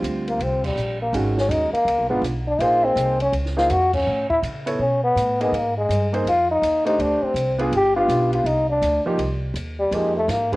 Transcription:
Already playing: grand piano D3 G3 C4 F4
0.03 upright bass D2, hi-hat pedal, ride
0.28 trombone A#3, ride
0.39 upright bass C2, trombone C4, ride
0.64 trombone G3, kick, crash
0.76 upright bass A#1, hi-hat pedal
1.02 trombone A#3
1.13 upright bass G#1, grand piano D#3 G#3 C#4 F#4, ride
1.38 trombone C#4, snare
1.49 upright bass D#2, trombone D#4, hi-hat pedal, ride
1.73 trombone A#3, muted upright bass stroke, ride
1.85 upright bass C#2, ride
1.98 upright bass B1
2.10 upright bass G#1, grand piano G#3 B3 D4 F4, trombone B3
2.22 upright bass B1, hi-hat pedal, ride
2.47 trombone D4
2.59 upright bass A#1, grand piano A#3 D#4 G#4 C5, trombone F4, ride
2.84 trombone C4
2.95 upright bass C2, hi-hat pedal, ride
3.20 trombone C#4, ride
3.32 upright bass C#2, ride
3.46 snare
3.57 grand piano A#3 D#4 G#4 C5, trombone F4, snare
3.70 upright bass F2, trombone F#4, hi-hat pedal, ride
3.93 trombone C#4, kick, crash
4.07 upright bass A2
4.30 trombone E4, muted upright bass stroke, kick
4.42 upright bass C#3, hi-hat pedal, ride
4.66 grand piano B3 E4 A4 C#5, ride
4.79 upright bass B2, trombone C#4
5.04 trombone B3
5.16 upright bass A2, hi-hat pedal, ride
5.40 grand piano A#3 D#4 G#4 D#5, trombone B3, ride
5.52 upright bass G#2, ride
5.56 trombone A#3
5.78 trombone G#3
5.89 upright bass G2, hi-hat pedal, ride
6.13 grand piano A#3 D#4 G#4 C5, ride
6.25 upright bass F2, trombone F4, ride
6.51 trombone D#4
6.62 upright bass D#2, hi-hat pedal, ride
6.85 grand piano A3 D4 G4 C5, trombone D#4, ride
6.99 upright bass D2, trombone D4, ride
7.22 trombone C4, muted upright bass stroke
7.34 upright bass C2, hi-hat pedal, ride
7.59 grand piano B3 D4 F4 G#4, ride
7.72 upright bass G1, trombone G4, ride
7.96 grand piano B3 D4 F4 G4, trombone F4
8.08 upright bass B1, hi-hat pedal, ride
8.33 trombone F4, ride
8.44 upright bass C2, trombone D#4, ride
8.70 trombone D4
8.82 upright bass D2, hi-hat pedal, ride
9.05 grand piano F3 A#3 D#4 G4, muted upright bass stroke
9.18 upright bass C2, ride
9.54 upright bass D#2, hi-hat pedal, ride
9.80 trombone G3
9.91 upright bass F2, grand piano F3 A#3 D#4 G4, trombone G#3, ride
10.17 trombone A3
10.28 upright bass G#2, trombone A#3, snare, hi-hat pedal, ride
10.53 grand piano G#3, kick, ride

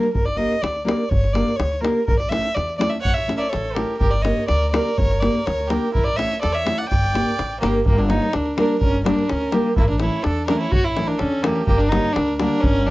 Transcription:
Already playing: fiddle A#4
0.03 davul high
0.13 upright bass G1, fiddle A#4, davul low
0.25 fiddle D5, davul high
0.36 nylon-string guitar A#3 D4 G4 A#4, fiddle D#5
0.52 davul high
0.62 upright bass D2, fiddle D5, davul high
0.76 davul high
0.85 nylon-string guitar A#3 D4 G4 A#4, fiddle D5, davul high
1.09 upright bass G1, fiddle C#5, davul low
1.24 davul high
1.33 nylon-string guitar A#3 D4 G4 A#4, fiddle D5, davul high
1.48 davul high
1.56 upright bass D2, fiddle C#5, davul high
1.73 davul high
1.80 nylon-string guitar A#3 D4 G4 A#4, fiddle A#4
1.84 davul high
2.06 upright bass A1, fiddle A#4, davul low
2.19 fiddle D5, davul high
2.29 nylon-string guitar A3 C#4 E4 A4, fiddle E5, davul high
2.46 davul high
2.54 upright bass E2, fiddle D5, davul high
2.69 davul high
2.78 nylon-string guitar A3 C#4 E4 A4, fiddle D5, davul high
2.90 fiddle E5
3.01 violin C#5, fiddle F#5, davul low
3.06 upright bass A1
3.14 violin C#5, fiddle E5
3.18 davul high
3.28 nylon-string guitar A3 C#4 E4 A4, davul high
3.36 violin A#4 C#5, fiddle D5 E5
3.41 davul high
3.49 violin A4, fiddle C#5, davul high
3.55 upright bass A1
3.65 davul high
3.73 nylon-string guitar A3 C#4 E4, violin G4, fiddle A#4, davul high
3.78 nylon-string guitar A4
3.97 violin G4, fiddle A#4, davul low
4.01 upright bass G1
4.10 violin A#4, fiddle D5, davul high
4.22 nylon-string guitar A#3 D4, violin C#5, fiddle D#5, davul high
4.26 nylon-string guitar G4 A#4
4.37 davul high
4.48 upright bass D2, violin A#4, fiddle D5, davul high
4.62 davul high
4.71 nylon-string guitar A#3 D4 G4, violin A#4, fiddle D5, davul high
4.75 nylon-string guitar A#4
4.94 upright bass G1, violin A#4, fiddle C#5
4.99 davul low
5.11 davul high
5.20 nylon-string guitar A#3 D4 G4 A#4, violin A#4, fiddle D5, davul high
5.35 davul high
5.45 upright bass D2, violin A#4, fiddle C#5, davul high
5.60 davul high
5.67 nylon-string guitar A#3 D4 G4, violin G4, fiddle A#4, davul high
5.72 nylon-string guitar A#4
5.92 violin E4, fiddle A#4, davul low
5.96 upright bass A1
6.04 violin A#4, fiddle D5, davul high
6.16 nylon-string guitar A3 C#4 E4 A4, violin C#5, fiddle E5, davul high
6.32 davul high
6.41 upright bass E2, violin A4, fiddle D5, davul high
6.52 violin C#5, fiddle E5, davul high
6.65 nylon-string guitar A3 C#4 E4 A4, davul high
6.77 violin D5, fiddle F#5
6.88 upright bass G1, violin D5, fiddle G5, davul low
7.04 davul high
7.14 nylon-string guitar A#3 D4 G4 A#4, davul high
7.39 upright bass A1, davul high
7.60 upright bass G1, fiddle A#3, nylon-string guitar A#3 D4 G4 A#4, violin G4, davul high
7.75 davul high
7.86 upright bass G1, fiddle A#3, violin G4, davul low
7.97 fiddle D4, violin A#4, davul high
8.08 nylon-string guitar G3 A#3 D4 G4 A#4, fiddle D#4, violin C#5, davul high
8.22 davul high
8.32 upright bass D2, fiddle D4, violin A#4, davul high
8.46 davul high
8.55 nylon-string guitar G3 A#3 D4 G4, fiddle D4, violin A#4, davul high
8.59 nylon-string guitar A#4
8.78 fiddle C#4, violin A#4, davul low
8.83 upright bass G1
8.95 davul high
9.03 nylon-string guitar G3 A#3 D4 G4 A#4, fiddle D4, violin A#4, davul high
9.19 davul high
9.28 upright bass D2, fiddle C#4, violin A#4, davul high
9.41 davul high
9.52 nylon-string guitar G3 A#3 D4 G4 A#4, fiddle A#3, violin G4, davul high
9.76 upright bass A1, fiddle A#3, violin E4, davul low
9.88 fiddle D4, violin A#4, davul high
9.99 nylon-string guitar E3 A3 C#4 E4 A4, fiddle E4, violin C#5, davul high
10.12 davul high
10.22 upright bass E2, fiddle D4, violin A4, davul high
10.37 davul high
10.46 nylon-string guitar E3 A3 C#4 E4 A4, fiddle D4, violin A#4, davul high
10.58 fiddle E4, violin C#5
10.70 upright bass A1, fiddle F#4, violin C#5, davul low
10.83 fiddle E4, violin C#5
10.96 nylon-string guitar E3 A3 C#4 E4 A4, davul high
11.06 fiddle D4, violin A#4, davul high
11.18 upright bass E2, fiddle C#4, violin A4, davul high
11.32 davul high
11.42 nylon-string guitar E3 A3 C#4 E4 A4, fiddle A#3, violin G4, davul high
11.56 davul high
11.65 upright bass G1, fiddle A#3, violin G4, davul low
11.78 fiddle D4, violin A#4, davul high
11.89 nylon-string guitar D3 G3 A#3 D4 G4, fiddle D#4, violin C#5, davul high
12.05 davul high
12.13 upright bass D2, fiddle D4, violin A#4, davul high
12.28 davul high
12.38 nylon-string guitar D3 G3 A#3 D4 G4, fiddle D4, violin A#4, davul high
12.61 upright bass G1, fiddle C#4, violin A#4, davul low
12.86 nylon-string guitar D3, fiddle D4

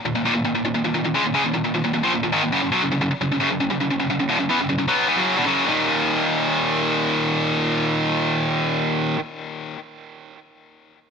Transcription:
0.05 distorted electric guitar D#2 A#2
0.15 distorted electric guitar D#2 A#2
0.25 distorted electric guitar D#2 A#2
0.35 distorted electric guitar D#2 A#2
0.45 distorted electric guitar D#2 A#2
0.55 distorted electric guitar D#2 A#2
0.65 distorted electric guitar D#2 A#2
0.74 distorted electric guitar D#2 A#2
0.84 distorted electric guitar D#2 A#2
0.94 distorted electric guitar D#2 A#2
1.04 distorted electric guitar D#2 A#2
1.14 distorted electric guitar C#3 G#3
1.24 distorted electric guitar D#2 A#2
1.34 distorted electric guitar C#3 G#3
1.44 distorted electric guitar D#2 A#2
1.53 distorted electric guitar D#2 A#2
1.64 distorted electric guitar D#2 A#2
1.74 distorted electric guitar D#2 A#2
1.84 distorted electric guitar D#2 A#2
1.93 distorted electric guitar D#2 A#2
2.03 distorted electric guitar A#2 F3
2.14 distorted electric guitar D#2 A#2
2.23 distorted electric guitar D#2 A#2
2.32 distorted electric guitar G#2 D#3
2.43 distorted electric guitar D#2 A#2
2.52 distorted electric guitar F#2 C#3
2.62 distorted electric guitar F#2 C#3
2.72 distorted electric guitar B2 F#3
2.82 distorted electric guitar F#2 C#3
2.92 distorted electric guitar F#2 C#3
3.01 distorted electric guitar F#2 C#3
3.11 muted distorted electric guitar stroke
3.21 distorted electric guitar F#2 C#3
3.32 distorted electric guitar F#2 C#3
3.40 distorted electric guitar F#2 C#3
3.50 distorted electric guitar F#2 C#3
3.60 distorted electric guitar F#2 C#3
3.70 distorted electric guitar F#2 C#3
3.80 distorted electric guitar F#2 C#3
3.90 distorted electric guitar F#2 C#3
4.00 distorted electric guitar F#2 C#3
4.10 distorted electric guitar F#2 C#3
4.20 distorted electric guitar F#2 C#3
4.29 distorted electric guitar E2 B2
4.40 distorted electric guitar F#2 C#3
4.50 distorted electric guitar E3 B3
4.60 distorted electric guitar F#2 C#3
4.69 distorted electric guitar F#2 C#3
4.78 distorted electric guitar F#2 C#3
4.88 distorted electric guitar B2 F#3 B3
5.08 distorted electric guitar E3 B3
5.16 distorted electric guitar F#2 C#3 F#3
5.37 distorted electric guitar E2 B2
5.46 distorted electric guitar F#2 C#3 F#3
5.65 distorted electric guitar D#2 A#2 D#3

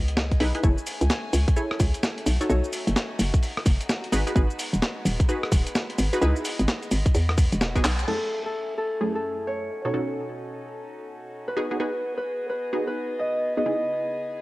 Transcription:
Already playing: fm bass C#2, violin section B3 G#4 D#5, synth stab D#4 E4 G#4 B4
0.08 closed hi-hat
0.17 snare
0.31 kick, closed hi-hat
0.40 fm bass B1, synth stab D#4 E4 G#4 B4, open hi-hat
0.55 synth stab D#4 E4 G#4 B4, closed hi-hat
0.63 fm bass F#1, violin section A3 C#4 G#5, synth stab E4 G#4 A4 C#5, kick, shaker
0.78 shaker
0.87 open hi-hat, shaker
1.01 fm bass C#2, closed hi-hat, shaker
1.10 snare, shaker
1.33 fm bass C#2, open hi-hat, shaker
1.48 kick, closed hi-hat, shaker
1.56 synth stab E4 G#4 A4 C#5, shaker
1.71 cross-stick
1.80 fm bass C#2, kick, open hi-hat, shaker
1.94 closed hi-hat, shaker
2.03 snare, shaker
2.18 closed hi-hat
2.26 fm bass B1, violin section C#4 D#4 F#4, open hi-hat, shaker
2.41 synth stab D#4 F#4 A4 C#5, closed hi-hat, shaker
2.49 fm bass B1, synth stab D#4 F#4 A4 C#5, shaker
2.64 shaker
2.73 open hi-hat, shaker
2.87 fm bass F#1, closed hi-hat, shaker
2.96 snare, shaker
3.19 fm bass F#1, open hi-hat, shaker
3.34 kick, closed hi-hat, shaker
3.43 open hi-hat, shaker
3.57 cross-stick
3.66 fm bass F#1, kick, open hi-hat, shaker
3.81 closed hi-hat, shaker
3.89 snare, shaker
4.04 closed hi-hat
4.12 fm bass G#1, violin section G#3 B3, synth stab D#4 F#4 G#4 B4, open hi-hat, shaker
4.27 synth stab D#4 F#4 G#4 B4, closed hi-hat, shaker
4.36 fm bass G#1, synth stab D#4 F#4 G#4 B4, kick, shaker
4.50 shaker
4.59 open hi-hat, shaker
4.73 fm bass D#1, closed hi-hat, shaker
4.82 snare, shaker
5.05 fm bass D#1, open hi-hat, shaker
5.20 kick, closed hi-hat, shaker
5.29 synth stab D#4 F#4 G#4 B4, shaker
5.43 cross-stick
5.52 fm bass D#1, kick, open hi-hat, shaker
5.67 closed hi-hat, shaker
5.75 snare, shaker
5.90 closed hi-hat
5.98 fm bass G#1, open hi-hat, shaker
6.13 synth stab D#4 F#4 G#4 B4, closed hi-hat, shaker
6.22 fm bass C#2, synth stab D#4 E4 G#4 B4, violin section D#5, shaker
6.36 shaker
6.45 open hi-hat, shaker
6.59 fm bass G#1, closed hi-hat, shaker
6.68 snare, shaker
6.83 closed hi-hat, shaker
6.91 fm bass G#1, open hi-hat, shaker
7.06 kick, closed hi-hat, shaker
7.15 fm bass E2, violin section B3 F#4, open hi-hat, shaker
7.29 cross-stick
7.38 kick, open hi-hat, shaker
7.53 fm bass E1, closed hi-hat, shaker
7.61 snare, shaker
7.76 synth stab B3 D#4 F#4 G#4, kick, cross-stick, closed hi-hat, shaker
7.85 fm bass B1, clap, open hi-hat, shaker
7.99 closed hi-hat, shaker
8.07 synth stab F#2 A3 C#4 E4 G#4, violin section A3 C#4 E4 G#4, harp A4, crash
8.46 harp A4
8.78 harp A4
9.01 synth stab F#2 A3 C#4 E4 G#4
9.15 harp A4
9.47 harp C#5
9.70 violin section D#4 F#4 A4
9.85 synth stab B2 C#4 D#4 F#4 A4, harp C#5
9.94 synth stab B2 C#4 D#4 F#4 A4
11.48 harp B4
11.56 violin section B3 G#4 D#5, synth stab B3 D#4 F#4 G#4
11.71 synth stab B3 D#4 F#4 G#4
11.80 synth stab B3 D#4 F#4 G#4, harp B4
12.17 harp B4
12.50 harp B4
12.73 synth stab B3 D#4 F#4 G#4
12.87 harp B4
13.19 harp D#5
13.57 synth stab B3 D#4 F#4 G#4, harp D#5
13.66 synth stab C#3 B3 D#4 E4 G#4, violin section G#4

